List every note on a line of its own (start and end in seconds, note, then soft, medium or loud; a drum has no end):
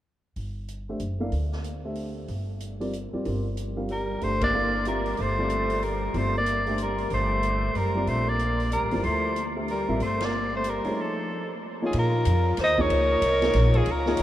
0.36 0.96 G1 medium
0.36 open hi-hat soft
0.68 closed hi-hat soft
0.89 0.99 A3 medium
0.89 1.00 D4 soft
0.89 1.00 G4 soft
0.89 1.00 C5 medium
0.89 1.00 E5 medium
1.00 1.30 F#1 medium
1.00 closed hi-hat soft
1.20 1.31 A#3 medium
1.20 1.31 E4 medium
1.20 1.31 A4 medium
1.20 1.31 D5 medium
1.20 1.31 F5 medium
1.32 2.25 D2 medium
1.32 open hi-hat soft
1.52 snare soft
1.64 closed hi-hat soft
1.84 2.26 A3 medium
1.84 2.27 D4 soft
1.84 2.27 G4 soft
1.84 2.27 C5 soft
1.84 2.27 E5 medium
1.95 open hi-hat soft
2.28 3.09 G1 medium
2.28 open hi-hat soft
2.60 closed hi-hat soft
2.80 2.92 G3 medium
2.80 2.92 C4 medium
2.80 2.92 F4 soft
2.80 2.92 A#4 medium
2.80 2.92 D5 medium
2.80 open hi-hat soft
2.93 closed hi-hat soft
3.13 3.24 G3 medium
3.13 3.24 C4 medium
3.13 3.24 F4 medium
3.13 3.24 A#4 medium
3.13 3.24 D5 medium
3.13 muted upright bass stroke soft
3.25 4.18 G1 medium
3.25 3.44 G3 medium
3.25 3.44 C4 medium
3.25 3.44 F4 soft
3.25 3.44 A#4 medium
3.25 3.44 D5 medium
3.25 open hi-hat soft
3.57 closed hi-hat soft
3.76 3.88 G3 medium
3.76 3.88 C4 soft
3.76 3.88 F4 medium
3.76 3.88 A#4 medium
3.76 3.88 F5 medium
3.89 4.24 G3 medium
3.89 4.25 A#4 medium
3.89 open hi-hat soft
4.21 5.15 G1 medium
4.21 4.53 A3 soft
4.21 4.42 A3 medium
4.21 4.53 D4 soft
4.21 4.53 G4 soft
4.21 4.53 C5 soft
4.21 4.43 C5 medium
4.21 4.53 E5 medium
4.21 open hi-hat soft
4.41 4.83 A#3 medium
4.41 4.84 D5 medium
4.41 kick medium
4.41 ride medium
4.54 4.72 A#3 medium
4.54 4.72 E4 medium
4.54 4.72 A4 medium
4.54 4.72 D5 medium
4.54 4.72 F5 medium
4.85 5.04 G3 medium
4.85 5.19 G3 medium
4.85 5.05 C4 soft
4.85 5.05 F4 medium
4.85 5.05 A#4 medium
4.85 5.23 A#4 medium
4.85 5.05 E5 medium
4.85 closed hi-hat soft
5.06 open hi-hat soft
5.17 6.11 G1 medium
5.17 5.85 A3 medium
5.17 open hi-hat soft
5.21 5.85 C5 medium
5.38 5.80 G3 soft
5.38 5.80 C4 medium
5.38 5.80 F4 soft
5.38 5.80 A4 medium
5.38 5.81 D5 medium
5.50 closed hi-hat soft
5.70 open hi-hat soft
5.82 6.18 G3 medium
5.82 6.19 A#4 medium
5.82 open hi-hat soft
6.14 7.07 G1 medium
6.14 6.33 G3 medium
6.14 6.36 A3 medium
6.14 6.33 C4 medium
6.14 6.33 F4 medium
6.14 6.33 A#4 soft
6.14 6.36 C5 medium
6.14 6.33 D5 medium
6.14 open hi-hat soft
6.37 6.77 A#3 medium
6.37 6.77 D5 medium
6.46 closed hi-hat soft
6.67 6.78 A3 medium
6.67 6.78 D4 medium
6.67 6.78 G4 medium
6.67 6.78 C5 medium
6.67 6.78 E5 medium
6.67 open hi-hat soft
6.78 7.10 G3 medium
6.78 closed hi-hat soft
6.82 7.11 A#4 medium
6.98 open hi-hat soft
7.10 7.71 G1 medium
7.10 7.79 A3 medium
7.10 7.79 C5 medium
7.10 open hi-hat soft
7.43 closed hi-hat soft
7.75 8.05 F#1 medium
7.75 8.09 G3 medium
7.75 8.10 A#4 medium
7.75 open hi-hat soft
7.95 8.37 G3 medium
7.95 8.37 C4 soft
7.95 8.37 F4 medium
7.95 8.38 A#4 medium
7.95 8.37 D5 medium
8.07 8.78 A#1 medium
8.07 8.30 A3 medium
8.07 8.30 C5 medium
8.07 open hi-hat soft
8.29 8.72 A#3 medium
8.29 8.72 D5 medium
8.39 closed hi-hat soft
8.60 open hi-hat soft
8.72 9.08 G3 medium
8.72 9.06 A#4 medium
8.72 closed hi-hat medium
8.82 8.93 A1 medium
8.91 9.04 F#1 medium
8.91 9.34 F3 medium
8.91 9.34 A#3 medium
8.91 9.34 E4 medium
8.91 9.34 A4 medium
8.91 9.34 C5 medium
8.91 open hi-hat soft
9.04 9.85 D2 medium
9.04 9.44 A3 medium
9.04 9.43 C5 medium
9.04 open hi-hat soft
9.36 closed hi-hat soft
9.56 9.67 A3 medium
9.56 9.67 D4 soft
9.56 9.67 G4 soft
9.56 9.67 C5 medium
9.56 9.67 E5 medium
9.68 10.00 G3 medium
9.68 10.00 A#4 medium
9.68 open hi-hat soft
9.88 9.99 A1 medium
9.88 9.99 G3 medium
9.88 9.99 C4 medium
9.88 10.00 F4 medium
9.88 10.00 A#4 medium
9.88 10.00 E5 medium
10.00 10.81 G1 medium
10.00 10.26 A3 medium
10.00 10.26 C5 medium
10.00 open hi-hat soft
10.20 10.55 D5 medium
10.20 snare medium
10.20 ride medium
10.25 10.54 A#3 medium
10.55 10.69 A3 medium
10.55 10.71 C5 medium
10.64 11.02 G3 medium
10.64 closed hi-hat soft
10.70 11.02 A#4 medium
10.84 11.27 A3 medium
10.84 11.27 D#4 medium
10.84 11.27 F4 soft
10.84 11.27 G#4 medium
10.84 11.27 C#5 medium
10.84 muted upright bass stroke soft
10.84 open hi-hat soft
11.01 11.51 F3 medium
11.01 11.51 A4 medium
11.82 12.24 F3 medium
11.82 12.24 A#3 medium
11.82 12.24 D#4 medium
11.82 11.95 F4 medium
11.82 12.24 G#4 medium
11.82 12.24 C#5 medium
11.86 11.95 G#4 medium
11.93 12.25 A#2 medium
11.93 ride medium
11.97 12.56 F4 medium
11.97 12.57 A#4 medium
12.25 12.57 F2 medium
12.25 hi-hat pedal medium
12.25 ride medium
12.57 12.89 D#2 medium
12.57 12.81 C5 medium
12.57 snare soft
12.57 hi-hat pedal medium
12.57 ride medium
12.64 12.82 D#5 loud
12.78 13.20 F3 medium
12.78 13.20 A#3 medium
12.78 13.20 D#4 medium
12.78 13.20 G#4 medium
12.78 13.79 A#4 loud
12.78 13.20 C#5 medium
12.78 13.78 C#5 loud
12.78 kick medium
12.90 13.21 C#2 medium
12.90 ride medium
13.22 13.53 C2 medium
13.22 hi-hat pedal medium
13.22 ride medium
13.42 13.84 F3 medium
13.42 13.84 A#3 medium
13.42 13.84 D#4 medium
13.42 13.84 G#4 medium
13.42 13.84 C#5 medium
13.42 snare medium
13.42 ride soft
13.53 13.86 A#1 loud
13.53 snare soft
13.53 ride medium
13.74 13.90 F4 medium
13.74 13.93 G#4 medium
13.74 kick soft
13.74 ride soft
13.86 14.18 C#2 medium
13.86 ride medium
13.90 14.23 F4 medium
13.90 14.23 A#4 medium
14.06 14.23 F3 medium
14.06 14.23 A#3 medium
14.06 14.23 D#4 medium
14.06 14.23 G#4 medium
14.06 14.23 C#5 medium
14.06 snare soft
14.17 14.23 C2 medium
14.17 hi-hat pedal medium
14.17 ride medium